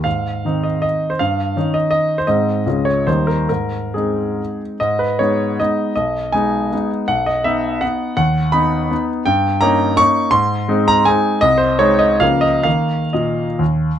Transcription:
<<
  \new Staff \with { instrumentName = "Grand piano" } { \time 3/4 \key aes \major \tempo 4 = 159 f''4. ees''8 ees''8. c''16 | f''4. ees''8 ees''8. c''16 | ees''4. des''8 c''8 bes'8 | bes'4 aes'4. r8 |
\key gis \minor dis''8 b'8 cis''4 dis''4 | dis''4 gis''4. r8 | fis''8 dis''8 e''4 fis''4 | fis''4 b''4. r8 |
\key aes \major g''4 bes''4 des'''4 | c'''4. bes''8 aes''4 | ees''8 c''8 des''8 ees''8 f''8 ees''8 | f''4 ees''4 r4 | }
  \new Staff \with { instrumentName = "Grand piano" } { \time 3/4 \key aes \major aes,4 <ees c' ees'>2 | g,4 <ees des' ees'>2 | <aes, aes c' ees'>4 <des, aes des' f'>4 <ees, g bes ees'>4 | aes,4 <aes c' ees'>2 |
\key gis \minor gis,4 <gis b dis'>4 <gis b dis'>4 | b,,4 <gis b dis'>4 <gis b dis'>4 | b,,4 <b dis'>4 <b dis'>4 | dis,4 <b dis'>4 <b dis'>4 |
\key aes \major g,4 <bes des' ees'>4 <bes des' ees'>4 | aes,4 <aes c' ees'>4 <aes c' ees'>4 | c,4 <aes c' ees'>4 <des, f bes bes'>4 | <ees bes bes'>4 bes,4 ees,4 | }
>>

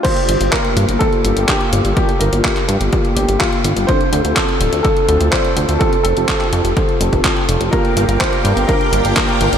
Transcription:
<<
  \new Staff \with { instrumentName = "String machine" } { \time 4/4 \key g \minor \tempo 4 = 125 r1 | r1 | r1 | r1 |
<bes' f'' g'' d'''>1 | }
  \new Staff \with { instrumentName = "Grand piano" } { \time 4/4 \key g \minor c''4 bes'4 a'4 g'4 | g'8 bes'4 r4 g'8 f'4 | c''4 a'4 a'4 c''4 | a'8 a'4 r2 r8 |
bes'4 c''4 bes'4 bes'4 | }
  \new Staff \with { instrumentName = "Analog polysynth" } { \time 4/4 \key g \minor <bes d' f' g'>8. <bes d' f' g'>4.~ <bes d' f' g'>16 <bes d' f' g'>4. | <bes d' f' g'>16 r8 <bes d' f' g'>2.~ <bes d' f' g'>16 | <c' d' f' a'>8. <c' d' f' a'>4.~ <c' d' f' a'>16 <c' d' f' a'>4. | <c' f' g' a'>16 r8 <c' f' g' a'>2.~ <c' f' g' a'>16 |
<bes d' f' g'>8. <bes d' f' g'>4.~ <bes d' f' g'>16 <bes d' f' g'>4. | }
  \new Staff \with { instrumentName = "Analog synth bass" } { \clef bass \time 4/4 \key g \minor r8 g,,16 g,,16 r8 g,16 g,,16 r8 g,,16 g,,16 r8 g,,16 g,,16 | r8 g,,16 g,,16 r8 g,16 g,,16 r8 g,,16 g,,16 r8 g,,16 g,,16 | r8 d,16 d,16 r8 d,,16 d,16 r8 d,16 d,16 r8 d,16 d,16 | r8 f,,16 f,,16 r8 f,16 f,,16 r8 f,,16 f,,16 r8 f,,16 f,,16 |
r8 g,,16 g,,16 r8 g,16 g,,16 r8 g,,16 g,,16 r8 g,,16 g,,16 | }
  \new DrumStaff \with { instrumentName = "Drums" } \drummode { \time 4/4 <cymc hh bd>16 hh16 hh16 hh16 <hc hh bd>16 hh16 hh16 hh16 <hh bd>16 hh16 hh16 hh16 <hc hh bd>16 hh16 hh16 hh16 | <hh bd>16 hh16 hh16 hh16 <hc hh bd>16 <hc hh>16 hh16 hh16 <hh bd>16 hh16 hh16 hh16 <hc hh bd>16 hh16 hh16 hh16 | <hh bd>16 hh16 hh16 hh16 <hc hh bd>16 hh16 hh16 hh16 <hh bd>16 hh16 hh16 hh16 <hc hh bd>16 hh16 hh16 hh16 | <hh bd>16 hh16 hh16 hh16 <hc hh bd>16 <hc hh>16 hh16 hh16 <hh bd>16 hh16 hh16 <hh bd>16 <hc hh bd>16 hh16 hh16 hh16 |
<hh bd>16 hh16 hh16 hh16 <hc hh bd>16 hh16 hh16 hh16 <hh bd>16 hh16 hh16 hh16 <hc hh bd>16 hh16 hh16 hh16 | }
>>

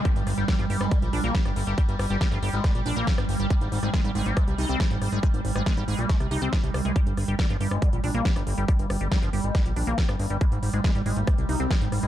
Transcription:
<<
  \new Staff \with { instrumentName = "Acid bass" } { \clef bass \time 4/4 \key g \phrygian \tempo 4 = 139 r8. g16 g16 f16 g16 aes16 g16 r16 d'16 bes16 g16 r8 g16 | g16 r8 g16 g16 f16 g16 aes16 g16 r16 d'16 bes16 g16 r8 g16 | aes16 r8 aes16 aes16 g16 aes16 bes16 aes16 r16 ees'16 c'16 aes16 r8 aes16 | aes16 r8 aes16 aes16 g16 aes16 bes16 aes16 r16 ees'16 c'16 aes16 r8 aes16 |
g16 r8 g16 g16 f16 g16 aes16 g16 r16 d'16 bes16 g16 r8 g16 | g16 r8 g16 g16 f16 g16 aes16 g16 r16 d'16 bes16 g16 r8 g16 | aes16 r8 aes16 aes16 g16 aes16 bes16 aes16 r16 ees'16 c'16 aes16 r8 aes16 | }
  \new Staff \with { instrumentName = "Synth texture" } { \clef bass \time 4/4 \key g \phrygian g1~ | g1~ | g1~ | g1 |
g1~ | g1~ | g1 | }
  \new Staff \with { instrumentName = "Analog synth bass" } { \clef bass \time 4/4 \key g \phrygian r16 g,,16 g,,16 g,,16 r16 g,,16 g,,16 g,,16 r16 bes,,16 bes,,16 bes,,16 r16 g,,16 g,,16 g,,16 | r16 g,,16 g,,16 g,,16 r16 g,,16 g,,16 aes,,16 r16 bes,,16 bes,,16 bes,,16 r16 g,,16 g,,16 g,,16 | r16 aes,,16 aes,,16 aes,,16 r16 aes,,16 aes,,16 aes,,16 r16 c,16 c,16 c,16 r16 aes,,16 aes,,16 aes,,16 | r16 aes,,16 aes,,16 aes,,16 r16 aes,,16 aes,,16 bes,,16 r16 c,16 c,16 c,16 r16 c,16 c,16 c,16 |
r16 g,,16 g,,16 g,,16 r16 g,,16 g,,16 g,,16 r16 bes,,16 bes,,16 bes,,16 r16 g,,16 g,,16 g,,16 | r16 g,,16 g,,16 g,,16 r16 g,,16 g,,16 aes,,16 r16 bes,,16 bes,,16 bes,,16 r16 g,,16 g,,16 g,,16 | r16 aes,,16 aes,,16 aes,,16 r16 aes,,16 aes,,16 aes,,16 r16 c,16 c,16 c,16 r16 aes,,16 aes,,16 aes,,16 | }
  \new DrumStaff \with { instrumentName = "Drums" } \drummode { \time 4/4 <hh bd>16 hh16 <hho ss>16 hh16 <hh bd sn>16 hh16 hho16 <hh ss>16 <hh bd>16 hh16 hho16 hh16 <hh bd sn>16 <hh ss>16 hho16 hh16 | <hh bd>16 hh16 <hho ss>16 hh16 <hh bd sn>16 hh16 hho16 hh16 <hh bd ss sn>16 hh16 hho16 hh16 <hh bd sn>16 <hh ss>16 hho16 hh16 | <hh bd>16 hh16 hho16 <hh ss>16 <hh bd sn>16 hh16 hho16 hh16 <hh bd ss>16 hh16 hho16 hh16 <hh bd sn>16 hh16 <hho ss>16 hh16 | <hh bd>16 hh16 hho16 <hh ss>16 <hh bd sn>16 hh16 hho16 hh16 <hh bd sn>16 <hh ss>16 hho16 hh16 <hh bd sn>16 hh16 <hho ss>16 hh16 |
<hh bd>16 hh16 <hho ss>16 hh16 <hh bd sn>16 hh16 hho16 <hh ss>16 <hh bd>16 hh16 hho16 hh16 <hh bd sn>16 <hh ss>16 hho16 hh16 | <hh bd>16 hh16 <hho ss>16 hh16 <hh bd sn>16 hh16 hho16 hh16 <hh bd ss sn>16 hh16 hho16 hh16 <hh bd sn>16 <hh ss>16 hho16 hh16 | <hh bd>16 hh16 hho16 <hh ss>16 <hh bd sn>16 hh16 hho16 hh16 <hh bd ss>16 hh16 hho16 hh16 <hh bd sn>16 hh16 <hho ss>16 hh16 | }
>>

